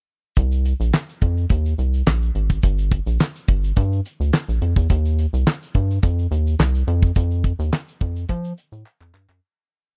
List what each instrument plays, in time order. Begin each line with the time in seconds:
0.36 analog synth bass C2, kick, closed hi-hat, shaker
0.52 shaker
0.65 closed hi-hat, shaker
0.80 analog synth bass A#1, shaker
0.93 snare, clap, closed hi-hat, shaker
1.09 shaker
1.21 analog synth bass F2, kick, closed hi-hat
1.37 shaker
1.50 analog synth bass D#2, kick, closed hi-hat, shaker
1.66 shaker
1.78 analog synth bass C2, closed hi-hat, shaker
1.94 shaker
2.07 analog synth bass A#1, snare, clap, closed hi-hat, shaker
2.22 shaker
2.35 analog synth bass G#1, closed hi-hat
2.50 kick, shaker
2.63 analog synth bass G1, kick, closed hi-hat, shaker
2.78 shaker
2.92 kick, closed hi-hat, shaker
3.06 analog synth bass A#1, shaker
3.20 snare, clap, closed hi-hat, shaker
3.36 shaker
3.48 analog synth bass G1, kick, closed hi-hat
3.64 shaker
3.76 analog synth bass G2, kick, closed hi-hat, shaker
3.92 shaker
4.06 closed hi-hat, shaker
4.20 analog synth bass D2, shaker
4.33 snare, clap, closed hi-hat, shaker
4.48 analog synth bass A#1, shaker
4.62 analog synth bass F2, closed hi-hat
4.76 analog synth bass E2, kick, shaker
4.90 analog synth bass D#2, kick, closed hi-hat, shaker
5.05 shaker
5.19 closed hi-hat, shaker
5.33 analog synth bass C2, shaker
5.47 snare, clap, closed hi-hat, shaker
5.63 shaker
5.74 analog synth bass G2, kick, closed hi-hat
5.91 shaker
6.03 analog synth bass F2, kick, closed hi-hat, shaker
6.19 shaker
6.31 analog synth bass D#2, closed hi-hat, shaker
6.47 shaker
6.59 analog synth bass C2, snare, clap, closed hi-hat, shaker
6.75 shaker
6.87 analog synth bass F2, closed hi-hat
7.02 kick, shaker
7.16 analog synth bass F2, kick, closed hi-hat, shaker
7.31 shaker
7.44 kick, closed hi-hat, shaker
7.59 analog synth bass D#2, shaker
7.72 snare, clap, closed hi-hat, shaker
7.88 shaker
8.01 analog synth bass F2, kick, closed hi-hat
8.16 shaker
8.29 analog synth bass F3, kick, closed hi-hat, shaker
8.44 shaker
8.58 closed hi-hat, shaker
8.72 analog synth bass A2, shaker
8.86 clap, shaker
9.00 analog synth bass F2, clap, shaker
9.14 analog synth bass G2, clap
9.29 analog synth bass F#2, clap, shaker